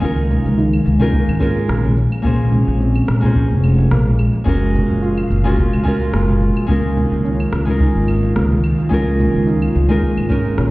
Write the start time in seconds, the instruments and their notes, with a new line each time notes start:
Already playing: analog synth pad D#3 A#3 F5
0.00 upright bass C#2, nylon-string guitar G#3 C#4 D#4 F4, synth pluck A#3, kick, shaker
0.05 nylon-string guitar A#4
0.18 shaker
0.31 low conga, shaker
0.45 upright bass C#2, high conga, shaker
0.58 synth pluck D#4, shaker
0.73 claves, shaker
0.85 upright bass C#2, muted conga, shaker
0.99 nylon-string guitar G#3 C#4 D#4 F4 A#4, low conga, shaker
1.13 synth pluck A#3, kick, shaker
1.28 upright bass G#1, claves, shaker
1.40 nylon-string guitar G#3 C#4 D#4 F4 A#4, kick, shaker
1.57 shaker
1.69 upright bass A#1, synth pluck C#4, cross-stick, shaker
1.83 low conga, shaker
1.96 analog synth pad G#3 C#4, muted conga, shaker
2.12 claves, shaker
2.22 upright bass A#1, nylon-string guitar A#3 C#4 F4 G#4, synth pluck A#3, kick, shaker
2.27 nylon-string guitar C5
2.41 shaker
2.52 low conga, shaker
2.67 upright bass A#1, shaker
2.80 synth pluck C4, shaker
2.95 claves, shaker
3.08 upright bass A#1, cross-stick, muted conga, shaker
3.21 nylon-string guitar A#3 C#4 F4 G#4, kick, high conga, low conga, shaker
3.26 nylon-string guitar C5
3.36 synth pluck C#4, kick, shaker
3.50 upright bass F1, shaker
3.64 claves, shaker
3.79 muted conga, shaker
3.91 upright bass A#1, synth pluck A#3, cross-stick, shaker
4.06 low conga, shaker
4.19 muted conga, claves, shaker
4.34 high conga, shaker
4.44 upright bass F#1, analog synth pad A#2 F5, nylon-string guitar G#3 C#4 F4 F#4, synth pluck A#3, kick, shaker
4.49 nylon-string guitar A#4
4.62 shaker
4.75 low conga, shaker
4.89 upright bass F#1, high conga, shaker
5.02 synth pluck F4, shaker
5.18 claves, shaker
5.30 upright bass F#1, muted conga, shaker
5.44 nylon-string guitar G#3 C#4 F4 F#4 A#4, low conga, shaker
5.58 synth pluck A#3, kick, shaker
5.73 upright bass C#2, claves, shaker
5.83 nylon-string guitar G#3 C#4 F4 F#4, kick, shaker
5.88 nylon-string guitar A#4
6.02 shaker
6.13 upright bass F#1, synth pluck A#3, cross-stick, shaker
6.28 low conga, shaker
6.41 muted conga, shaker
6.57 claves, shaker
6.66 upright bass C#2, analog synth pad D#3 A#3 F4, nylon-string guitar G#3 C#4 D#4 F4, synth pluck A#3, kick, shaker
6.71 nylon-string guitar A#4
6.85 shaker
6.97 low conga, shaker
7.12 upright bass C#2, shaker
7.25 synth pluck C#4, shaker
7.40 claves, shaker
7.52 upright bass C#2, cross-stick, muted conga, shaker
7.65 nylon-string guitar G#3 C#4 D#4 F4, kick, high conga, low conga, shaker
7.70 nylon-string guitar A#4
7.80 synth pluck D#4, kick, shaker
7.96 upright bass G#1, shaker
8.08 claves, shaker
8.23 muted conga, shaker
8.36 upright bass C#2, synth pluck A#3, cross-stick, muted conga, shaker
8.51 low conga, shaker
8.64 muted conga, claves, shaker
8.79 high conga, shaker
8.89 upright bass C#2, nylon-string guitar G#3 C#4 D#4 F4, synth pluck A#3, kick, shaker
8.94 nylon-string guitar A#4
9.07 shaker
9.20 low conga, shaker
9.35 upright bass C#2, high conga, shaker
9.47 synth pluck D#4, shaker
9.62 claves, shaker
9.75 upright bass C#2, muted conga, shaker
9.89 nylon-string guitar G#3 C#4 D#4 F4 A#4, low conga, shaker
10.02 synth pluck A#3, kick, shaker
10.17 upright bass G#1, claves, shaker
10.29 nylon-string guitar G#3 C#4 D#4 F4 A#4, kick, shaker
10.46 shaker
10.58 upright bass A#1, synth pluck C#4, cross-stick, shaker